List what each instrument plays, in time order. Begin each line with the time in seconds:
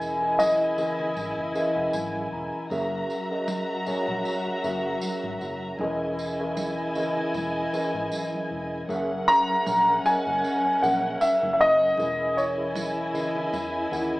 Already playing: fingered electric bass E1, tine electric piano E3 C#4 G#4 A#4 D#5, violin section E4 D#5 G#5, grand piano G#5
0.01 tambourine
0.21 tine electric piano E3 C#4 G#4 A#4 D#5
0.39 grand piano D#5, tambourine, high conga
0.77 tine electric piano E3 C#4 G#4 A#4 D#5, tambourine, low conga
0.99 low conga
1.17 fingered electric bass G#1, tambourine, muted conga
1.37 fingered electric bass F#1
1.55 tine electric piano E3 C#4 G#4 A#4 D#5 E5, tambourine, muted conga
1.76 fingered electric bass E1, tine electric piano F#5
1.93 fingered electric bass G#1, tine electric piano G#5, tambourine, high conga
2.15 high conga
2.32 fingered electric bass E1, tine electric piano A#5
2.70 fingered electric bass F#1, tine electric piano F#3 C#4 G#4 A#4 E5, violin section F#4 E5 A#5, tambourine, muted conga
3.10 tambourine
3.30 tine electric piano F#3 C#4 G#4 A#4 D#5
3.48 tambourine, high conga
3.86 tine electric piano F#3 C#4 G#4 A#4 C#5, muted fingered electric bass stroke, tambourine
4.08 fingered electric bass A#1
4.25 tambourine, muted conga
4.47 muted fingered electric bass stroke
4.63 fingered electric bass F#1, tine electric piano F#3 C#4 G#4 A#4 E5, tambourine, muted conga
5.01 tambourine, high conga
5.24 fingered electric bass G#1, high conga
5.41 fingered electric bass F#1, tambourine
5.79 fingered electric bass E1, tine electric piano E3 C#4 G#4 A#4 D#5, violin section E4 D#5 G#5, muted conga
6.19 tambourine
6.39 tine electric piano E3 C#4 G#4 A#4 E5
6.57 tambourine, high conga
6.95 tine electric piano E3 C#4 G#4 A#4 D#5, tambourine, low conga
7.17 low conga
7.34 fingered electric bass E1, tambourine, muted conga
7.73 tine electric piano E3 C#4 G#4 A#4 D#5, tambourine, muted conga
7.94 fingered electric bass G#1
8.12 tambourine, high conga
8.34 high conga
8.51 fingered electric bass E1
8.88 fingered electric bass F#1, tine electric piano F#3 C#4 G#4 A#4 E5, violin section C#4 A#4 F#5, tambourine, muted conga
9.28 grand piano A#5, tambourine
9.48 tine electric piano F#3 C#4 G#4 A#4 E5
9.66 fingered electric bass A#1, tambourine, high conga
10.05 tine electric piano F#3 C#4 G#4 A#4 D#5, grand piano G#5, tambourine
10.27 fingered electric bass F#1
10.44 tambourine, muted conga
10.66 muted fingered electric bass stroke
10.82 fingered electric bass A#1, tine electric piano F#3 C#4 G#4 A#4 E5, grand piano F#5, tambourine, muted conga
11.21 grand piano E5, tambourine, high conga
11.43 fingered electric bass F#1, high conga
11.53 grand piano E5
11.61 fingered electric bass F#1, grand piano D#5
11.97 fingered electric bass E1, tine electric piano E3 C#4 G#4 A#4 D#5, violin section E4 D#5 G#5, tambourine, muted conga
12.37 grand piano C#5, tambourine
12.57 tine electric piano E3 C#4 G#4 A#4 C#5
12.75 tambourine, high conga
13.14 tine electric piano E3 C#4 G#4 A#4 D#5, tambourine, low conga
13.35 low conga
13.53 fingered electric bass E2, tambourine, muted conga
13.91 fingered electric bass D#2, tine electric piano D#3 C#4 G#4 A#4 F#5, tambourine
13.98 tine electric piano E4